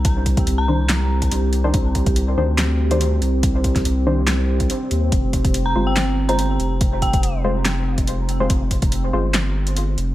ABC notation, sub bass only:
X:1
M:4/4
L:1/8
Q:"Swing 16ths" 1/4=142
K:Cm
V:1 name="Sub bass" clef=bass
C,,2 C,,4 C,,2 | C,,3 D,,4 C,,- | C,,2 C,,4 z E,, | F,,,3 G,,,4 F,,,- |
F,,,2 F,,,4 F,,,2 | F,,,3 G,,,4 F,,, |]